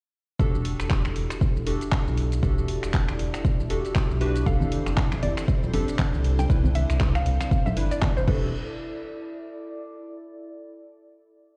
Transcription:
0.39 0.75 E1 loud
0.39 1.64 D4 medium
0.39 8.27 E4 medium
0.39 1.64 F#4 medium
0.39 1.64 G4 medium
0.39 1.64 A4 loud
0.39 kick loud
0.39 closed hi-hat medium
0.39 shaker medium
0.55 shaker soft
0.65 8.28 A4 medium
0.65 open hi-hat loud
0.80 1.13 E1 medium
0.80 finger snap medium
0.80 closed hi-hat medium
0.80 shaker medium
0.90 kick loud
0.90 clap loud
0.90 closed hi-hat medium
0.90 shaker medium
1.05 finger snap medium
1.05 shaker soft
1.16 1.28 E1 loud
1.16 open hi-hat medium
1.30 finger snap medium
1.30 closed hi-hat medium
1.30 shaker medium
1.41 kick loud
1.41 closed hi-hat medium
1.41 shaker medium
1.57 shaker soft
1.67 1.79 E1 medium
1.67 2.40 D4 medium
1.67 2.40 F#4 medium
1.67 2.40 G4 medium
1.67 2.40 A4 medium
1.67 open hi-hat loud
1.81 closed hi-hat medium
1.81 shaker medium
1.92 kick loud
1.92 clap loud
1.92 closed hi-hat medium
1.92 shaker medium
2.07 2.40 B1 medium
2.07 shaker soft
2.12 8.28 D5 medium
2.18 open hi-hat medium
2.32 closed hi-hat medium
2.32 shaker medium
2.43 2.79 E1 loud
2.43 3.67 D4 medium
2.43 3.67 F#4 medium
2.43 3.68 G4 medium
2.43 3.68 A4 medium
2.43 kick loud
2.43 closed hi-hat medium
2.43 shaker medium
2.58 shaker soft
2.68 open hi-hat loud
2.83 3.16 E1 medium
2.83 finger snap medium
2.83 closed hi-hat medium
2.83 shaker medium
2.94 kick loud
2.94 clap loud
2.94 closed hi-hat medium
2.94 shaker medium
3.08 finger snap medium
3.08 shaker soft
3.19 3.31 E1 loud
3.19 open hi-hat loud
3.34 finger snap medium
3.34 closed hi-hat medium
3.34 shaker medium
3.45 kick loud
3.45 closed hi-hat medium
3.45 shaker medium
3.60 shaker soft
3.70 3.82 E1 medium
3.70 4.18 D4 medium
3.70 4.18 F#4 medium
3.70 4.18 G4 medium
3.70 4.18 A4 medium
3.70 open hi-hat loud
3.85 closed hi-hat medium
3.85 shaker medium
3.95 kick loud
3.95 clap loud
3.95 closed hi-hat medium
3.95 shaker medium
4.10 4.43 B1 medium
4.10 shaker soft
4.21 4.44 D4 loud
4.21 4.44 F#4 medium
4.21 4.44 G4 medium
4.21 4.44 B4 loud
4.21 open hi-hat medium
4.36 closed hi-hat medium
4.36 shaker medium
4.46 4.82 F1 loud
4.46 8.54 C4 medium
4.46 5.71 D4 medium
4.46 5.71 G4 medium
4.46 5.71 A4 loud
4.46 8.54 C5 medium
4.46 4.77 F5 loud
4.46 kick loud
4.46 closed hi-hat medium
4.46 high bongo medium
4.46 shaker medium
4.61 high conga loud
4.61 shaker soft
4.72 open hi-hat loud
4.86 5.19 F1 medium
4.86 finger snap medium
4.86 closed hi-hat medium
4.86 high bongo soft
4.86 shaker medium
4.97 kick loud
4.97 clap loud
4.97 closed hi-hat soft
4.97 shaker medium
5.12 finger snap medium
5.12 high bongo medium
5.12 shaker soft
5.23 5.35 F1 loud
5.23 5.43 D5 medium
5.23 open hi-hat medium
5.23 high conga medium
5.37 finger snap medium
5.37 closed hi-hat medium
5.37 shaker medium
5.48 kick loud
5.48 closed hi-hat medium
5.48 high bongo soft
5.48 shaker medium
5.63 low conga medium
5.63 shaker soft
5.73 5.85 F1 medium
5.73 6.47 D4 medium
5.73 6.47 G4 medium
5.73 6.47 A4 medium
5.73 open hi-hat loud
5.73 high bongo medium
5.88 closed hi-hat medium
5.88 shaker medium
5.99 kick loud
5.99 clap loud
5.99 closed hi-hat medium
5.99 high conga medium
5.99 shaker medium
6.13 6.47 C2 medium
6.13 high bongo soft
6.13 shaker soft
6.24 open hi-hat loud
6.39 6.68 G5 medium
6.39 closed hi-hat medium
6.39 high bongo medium
6.39 shaker medium
6.50 6.85 C2 loud
6.50 7.74 D4 medium
6.50 7.74 E4 medium
6.50 7.74 B4 medium
6.50 kick loud
6.50 closed hi-hat medium
6.50 shaker medium
6.64 high conga medium
6.64 shaker soft
6.75 7.06 E5 loud
6.75 open hi-hat loud
6.75 high bongo medium
6.90 7.23 C2 medium
6.90 finger snap medium
6.90 closed hi-hat medium
6.90 shaker medium
7.01 kick loud
7.01 clap loud
7.01 closed hi-hat medium
7.01 high bongo medium
7.01 shaker medium
7.15 7.34 F5 loud
7.15 finger snap medium
7.15 shaker soft
7.26 7.38 C2 loud
7.26 open hi-hat loud
7.40 7.60 F5 medium
7.40 finger snap medium
7.40 closed hi-hat medium
7.40 high bongo soft
7.40 shaker medium
7.51 kick loud
7.51 closed hi-hat soft
7.51 shaker medium
7.66 7.85 E5 medium
7.66 high bongo medium
7.66 low conga medium
7.66 shaker soft
7.77 7.89 G1 loud
7.77 8.26 D4 medium
7.77 8.28 E4 medium
7.77 8.28 B4 medium
7.77 open hi-hat loud
7.92 8.11 D5 medium
7.92 closed hi-hat medium
7.92 shaker medium
8.02 kick loud
8.02 clap loud
8.02 closed hi-hat soft
8.02 high bongo medium
8.02 high conga loud
8.02 shaker medium
8.17 8.27 G1 medium
8.17 8.28 C5 medium
8.17 shaker soft
8.28 8.51 E1 loud
8.28 8.47 D4 medium
8.28 10.27 E4 medium
8.28 8.47 F#4 medium
8.28 8.47 G4 medium
8.28 8.48 A4 loud
8.28 8.47 B4 medium
8.28 kick loud
8.28 crash medium
8.28 high bongo medium
8.36 10.27 A4 medium
8.70 10.53 D5 medium

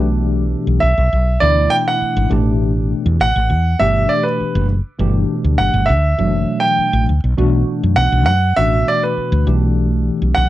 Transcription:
0.00 0.54 B1 medium
0.00 0.87 B2 medium
0.00 0.88 E3 medium
0.00 0.88 A3 medium
0.00 0.88 D4 medium
0.00 0.88 G4 medium
0.67 0.79 B1 medium
0.80 0.95 B1 medium
0.80 1.42 E5 medium
0.98 1.09 B1 medium
1.13 1.37 B1 medium
1.40 1.66 D2 medium
1.40 2.28 B2 medium
1.40 2.28 E3 medium
1.40 2.29 A3 medium
1.40 2.29 D4 medium
1.40 2.31 E4 medium
1.40 1.68 D5 medium
1.70 1.75 G5 medium
1.88 2.28 F#5 medium
2.02 muted fretless electric bass stroke soft
2.17 2.28 G#1 loud
2.29 2.92 A1 loud
2.29 3.25 B2 medium
2.29 3.25 E3 medium
2.29 3.26 A3 medium
2.29 3.26 D4 medium
2.29 3.26 G4 medium
3.06 3.18 E2 medium
3.20 3.33 A1 medium
3.20 3.82 F#5 medium
3.36 3.51 A1 medium
3.50 3.74 E2 medium
3.79 4.05 G1 medium
3.79 4.72 B2 medium
3.79 4.72 E3 medium
3.79 4.72 A3 medium
3.79 4.72 D4 medium
3.79 4.72 G4 medium
3.79 4.10 E5 medium
4.09 4.23 D5 medium
4.23 4.65 B4 medium
4.40 muted fretless electric bass stroke soft
4.55 4.79 F#1 loud
4.99 5.24 G1 medium
4.99 5.91 B2 medium
4.99 5.91 E3 medium
4.99 5.91 A3 medium
4.99 5.92 D4 medium
4.99 5.92 G4 medium
5.44 5.56 D2 medium
5.58 5.71 G1 medium
5.58 5.89 F#5 medium
5.74 5.90 G1 medium
5.86 6.13 D2 medium
5.86 6.64 E5 medium
6.18 6.43 F#1 medium
6.18 7.10 B2 medium
6.18 7.11 E3 medium
6.18 7.11 F#3 medium
6.18 7.11 A3 medium
6.18 7.11 D4 medium
6.60 7.03 G5 medium
6.79 muted fretless electric bass stroke soft
6.93 7.05 A1 medium
7.09 7.22 D2 medium
7.24 7.36 B1 medium
7.37 7.63 B1 medium
7.37 8.30 B2 medium
7.37 8.30 E3 medium
7.37 8.30 A3 medium
7.37 8.30 D4 medium
7.37 8.30 F#4 medium
7.83 7.95 F#2 medium
7.96 8.09 B1 medium
7.96 8.24 F#5 medium
8.12 8.28 B1 medium
8.26 8.52 F#2 medium
8.26 8.57 F#5 medium
8.56 8.82 A1 medium
8.56 9.45 B2 medium
8.56 9.45 E3 medium
8.56 9.45 A3 medium
8.56 9.46 D4 medium
8.56 9.47 F#4 medium
8.56 8.87 E5 loud
8.88 9.02 D5 medium
9.03 9.44 B4 medium
9.17 muted fretless electric bass stroke soft
9.32 9.44 D2 medium
9.46 10.09 B1 loud
9.46 10.42 B2 medium
9.46 10.42 E3 medium
9.46 10.42 A3 medium
9.46 10.43 D4 medium
9.46 10.43 G4 medium
10.22 10.34 B1 medium
10.35 10.49 B1 medium
10.35 10.49 F#5 medium

